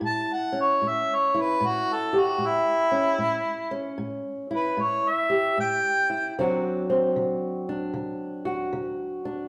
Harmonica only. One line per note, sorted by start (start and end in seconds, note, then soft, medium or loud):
0.06 0.35 A5 medium
0.34 0.58 F#5 medium
0.60 0.89 C#5 medium
0.88 1.17 E5 medium
1.15 1.42 C#5 medium
1.41 1.68 B4 medium
1.66 1.95 F#4 loud
1.93 2.21 A4 medium
2.20 2.47 F#4 medium
2.46 3.97 E4 loud
4.55 4.83 B4 medium
4.82 5.11 C#5 medium
5.09 5.58 E5 medium
5.61 6.35 G5 loud